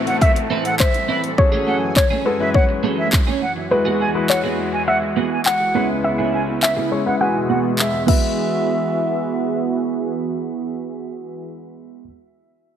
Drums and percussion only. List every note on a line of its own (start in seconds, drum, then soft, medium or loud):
0.07 closed hi-hat soft
0.21 kick loud
0.21 closed hi-hat medium
0.36 closed hi-hat medium
0.65 closed hi-hat medium
0.80 kick loud
0.80 clap loud
0.80 closed hi-hat medium
0.94 closed hi-hat soft
1.24 closed hi-hat soft
1.38 kick loud
1.96 kick loud
1.96 clap loud
2.54 kick medium
3.13 kick loud
3.13 clap loud
4.30 clap loud
5.46 clap loud
6.63 clap loud
7.79 clap loud
8.08 kick medium
8.08 crash medium